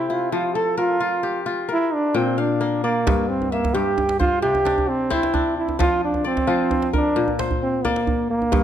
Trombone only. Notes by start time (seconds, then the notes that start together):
Already playing: E4
0.11 F4
0.33 F4
0.56 A4
0.78 F4
1.72 E4
1.94 D4
2.16 C4
2.39 D4
2.84 A#3
3.29 C4
3.51 A#3
3.74 G4
4.20 F4
4.42 G4
4.89 C4
5.13 E4
5.58 E4
5.81 F4
6.05 D4
6.27 C4
6.96 D4
7.63 C4
7.85 A#3
8.30 A#3